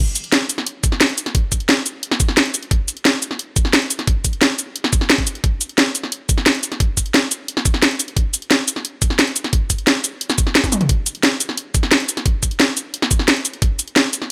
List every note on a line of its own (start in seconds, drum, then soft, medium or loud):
0.15 closed hi-hat medium
0.15 cabasa medium
0.24 closed hi-hat soft
0.32 snare loud
0.32 closed hi-hat loud
0.49 closed hi-hat medium
0.49 cabasa medium
0.58 snare soft
0.67 closed hi-hat loud
0.84 kick loud
0.84 closed hi-hat medium
0.84 cabasa medium
0.92 snare soft
1.01 snare loud
1.01 closed hi-hat loud
1.09 closed hi-hat soft
1.18 closed hi-hat medium
1.18 cabasa medium
1.26 snare soft
1.26 closed hi-hat soft
1.35 kick loud
1.35 closed hi-hat loud
1.52 kick medium
1.52 closed hi-hat medium
1.52 cabasa medium
1.60 closed hi-hat soft
1.69 snare loud
1.69 closed hi-hat medium
1.86 closed hi-hat medium
1.86 cabasa medium
2.03 closed hi-hat loud
2.11 snare medium
2.20 kick loud
2.20 closed hi-hat medium
2.20 cabasa medium
2.28 snare soft
2.37 snare loud
2.37 closed hi-hat medium
2.46 closed hi-hat soft
2.54 closed hi-hat medium
2.54 cabasa medium
2.63 closed hi-hat soft
2.71 kick loud
2.71 closed hi-hat loud
2.88 closed hi-hat medium
2.88 cabasa medium
2.97 closed hi-hat soft
3.05 snare loud
3.05 closed hi-hat medium
3.22 closed hi-hat medium
3.22 cabasa medium
3.31 snare soft
3.39 closed hi-hat medium
3.56 kick loud
3.56 closed hi-hat medium
3.56 cabasa medium
3.65 snare soft
3.73 snare loud
3.73 closed hi-hat medium
3.82 closed hi-hat soft
3.90 closed hi-hat medium
3.90 cabasa medium
3.99 snare soft
3.99 closed hi-hat soft
4.07 kick loud
4.07 closed hi-hat medium
4.24 kick medium
4.24 closed hi-hat medium
4.24 cabasa medium
4.33 closed hi-hat soft
4.42 snare loud
4.42 closed hi-hat medium
4.59 closed hi-hat medium
4.59 cabasa medium
4.76 closed hi-hat medium
4.84 snare medium
4.93 kick loud
4.93 closed hi-hat medium
4.93 cabasa medium
5.01 snare soft
5.10 snare loud
5.10 closed hi-hat medium
5.18 kick medium
5.18 closed hi-hat soft
5.27 closed hi-hat medium
5.27 cabasa medium
5.35 closed hi-hat soft
5.44 kick loud
5.44 closed hi-hat medium
5.61 closed hi-hat medium
5.61 cabasa medium
5.69 closed hi-hat soft
5.78 snare loud
5.78 closed hi-hat medium
5.95 closed hi-hat medium
5.95 cabasa medium
6.03 snare soft
6.12 closed hi-hat medium
6.29 kick loud
6.29 closed hi-hat medium
6.29 cabasa medium
6.38 snare soft
6.46 snare loud
6.46 closed hi-hat medium
6.55 closed hi-hat soft
6.63 closed hi-hat medium
6.63 cabasa medium
6.72 snare soft
6.72 closed hi-hat soft
6.80 kick loud
6.80 closed hi-hat loud
6.97 kick medium
6.97 closed hi-hat medium
6.97 cabasa medium
7.06 closed hi-hat soft
7.14 snare loud
7.14 closed hi-hat medium
7.31 closed hi-hat medium
7.31 cabasa medium
7.48 closed hi-hat medium
7.57 snare medium
7.65 kick loud
7.65 closed hi-hat medium
7.65 cabasa medium
7.74 snare soft
7.82 snare loud
7.82 closed hi-hat medium
7.91 closed hi-hat soft
8.00 closed hi-hat medium
8.00 cabasa medium
8.08 closed hi-hat soft
8.17 kick loud
8.17 closed hi-hat loud
8.34 closed hi-hat medium
8.34 cabasa medium
8.42 closed hi-hat soft
8.51 snare loud
8.51 closed hi-hat loud
8.68 closed hi-hat medium
8.68 cabasa medium
8.76 snare soft
8.85 closed hi-hat loud
9.02 kick loud
9.02 closed hi-hat medium
9.02 cabasa medium
9.10 snare soft
9.19 snare loud
9.19 closed hi-hat loud
9.27 closed hi-hat soft
9.36 closed hi-hat medium
9.36 cabasa medium
9.44 snare soft
9.44 closed hi-hat soft
9.53 kick loud
9.53 closed hi-hat loud
9.70 kick medium
9.70 closed hi-hat medium
9.70 cabasa medium
9.78 closed hi-hat soft
9.87 snare loud
9.87 closed hi-hat medium
10.04 closed hi-hat medium
10.04 cabasa medium
10.21 closed hi-hat loud
10.30 snare medium
10.30 cabasa soft
10.38 kick loud
10.38 closed hi-hat medium
10.38 cabasa medium
10.47 snare soft
10.55 snare loud
10.55 closed hi-hat loud
10.64 kick medium
10.64 closed hi-hat soft
10.64 high tom medium
10.64 cabasa soft
10.72 closed hi-hat medium
10.72 mid tom medium
10.72 cabasa medium
10.81 closed hi-hat soft
10.81 mid tom medium
10.89 kick loud
10.89 closed hi-hat loud
11.06 closed hi-hat medium
11.06 cabasa medium
11.15 closed hi-hat soft
11.23 snare loud
11.23 closed hi-hat loud
11.40 closed hi-hat medium
11.40 cabasa medium
11.49 snare soft
11.57 closed hi-hat loud
11.74 kick loud
11.74 closed hi-hat medium
11.74 cabasa medium
11.83 snare soft
11.92 snare loud
11.92 closed hi-hat medium
12.00 closed hi-hat soft
12.09 closed hi-hat medium
12.09 cabasa medium
12.17 snare soft
12.17 closed hi-hat soft
12.26 kick loud
12.26 closed hi-hat loud
12.43 kick medium
12.43 closed hi-hat medium
12.43 cabasa medium
12.51 closed hi-hat soft
12.60 snare loud
12.60 closed hi-hat medium
12.77 closed hi-hat medium
12.77 cabasa medium
12.94 closed hi-hat medium
13.02 snare medium
13.11 kick loud
13.11 closed hi-hat medium
13.11 cabasa medium
13.19 snare soft
13.28 snare loud
13.28 closed hi-hat medium
13.36 closed hi-hat soft
13.45 closed hi-hat medium
13.45 cabasa medium
13.53 closed hi-hat soft
13.62 kick loud
13.62 closed hi-hat medium
13.79 closed hi-hat medium
13.79 cabasa medium
13.88 closed hi-hat soft
13.96 snare loud
13.96 closed hi-hat medium
14.13 closed hi-hat medium
14.13 cabasa medium
14.22 snare soft